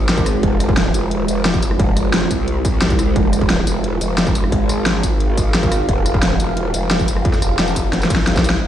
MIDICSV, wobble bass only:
0, 0, Header, 1, 2, 480
1, 0, Start_track
1, 0, Key_signature, -4, "minor"
1, 0, Tempo, 340909
1, 608, Time_signature, 4, 2, 24, 8
1, 12212, End_track
2, 0, Start_track
2, 0, Title_t, "Wobble bass"
2, 0, Program_c, 0, 39
2, 0, Note_on_c, 0, 32, 96
2, 589, Note_off_c, 0, 32, 0
2, 608, Note_on_c, 0, 29, 97
2, 1309, Note_off_c, 0, 29, 0
2, 1328, Note_on_c, 0, 29, 100
2, 1789, Note_off_c, 0, 29, 0
2, 1808, Note_on_c, 0, 29, 100
2, 2509, Note_off_c, 0, 29, 0
2, 2528, Note_on_c, 0, 29, 102
2, 3229, Note_off_c, 0, 29, 0
2, 3248, Note_on_c, 0, 36, 96
2, 4429, Note_off_c, 0, 36, 0
2, 4448, Note_on_c, 0, 29, 99
2, 5149, Note_off_c, 0, 29, 0
2, 5168, Note_on_c, 0, 29, 95
2, 5629, Note_off_c, 0, 29, 0
2, 5648, Note_on_c, 0, 29, 103
2, 6349, Note_off_c, 0, 29, 0
2, 6368, Note_on_c, 0, 32, 98
2, 8269, Note_off_c, 0, 32, 0
2, 8288, Note_on_c, 0, 29, 101
2, 8989, Note_off_c, 0, 29, 0
2, 9008, Note_on_c, 0, 29, 97
2, 9469, Note_off_c, 0, 29, 0
2, 9489, Note_on_c, 0, 29, 98
2, 10189, Note_off_c, 0, 29, 0
2, 10209, Note_on_c, 0, 41, 97
2, 10429, Note_off_c, 0, 41, 0
2, 10449, Note_on_c, 0, 29, 97
2, 10669, Note_off_c, 0, 29, 0
2, 10689, Note_on_c, 0, 29, 106
2, 11389, Note_off_c, 0, 29, 0
2, 11409, Note_on_c, 0, 36, 96
2, 12109, Note_off_c, 0, 36, 0
2, 12128, Note_on_c, 0, 29, 86
2, 12212, Note_off_c, 0, 29, 0
2, 12212, End_track
0, 0, End_of_file